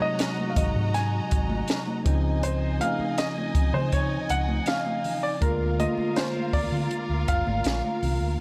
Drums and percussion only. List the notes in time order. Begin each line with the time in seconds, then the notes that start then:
0.01 high conga
0.19 snare, closed hi-hat
0.39 high conga
0.56 kick, closed hi-hat, muted conga, low conga
0.76 high conga, low conga
0.94 snare, closed hi-hat, muted conga
1.31 kick, closed hi-hat, muted conga
1.50 high conga
1.68 snare, closed hi-hat, muted conga
1.87 high conga
2.06 kick, closed hi-hat, low conga
2.43 closed hi-hat, muted conga
2.81 closed hi-hat, high conga
3.00 high conga
3.18 snare, closed hi-hat, muted conga
3.38 high conga
3.55 kick, closed hi-hat, muted conga, low conga
3.75 high conga, low conga
3.92 kick, closed hi-hat, muted conga
4.29 closed hi-hat, muted conga
4.48 high conga
4.66 snare, closed hi-hat, muted conga
4.86 high conga
5.04 open hi-hat, muted conga, low conga
5.42 kick, closed hi-hat, muted conga
5.80 closed hi-hat, muted conga, high conga
5.97 high conga
6.16 snare, closed hi-hat, muted conga
6.36 high conga
6.53 kick, open hi-hat, muted conga, low conga
6.73 high conga, low conga
6.91 closed hi-hat
7.28 kick, closed hi-hat, muted conga
7.47 high conga
7.64 snare, closed hi-hat
7.84 high conga
8.03 open hi-hat, muted conga, low conga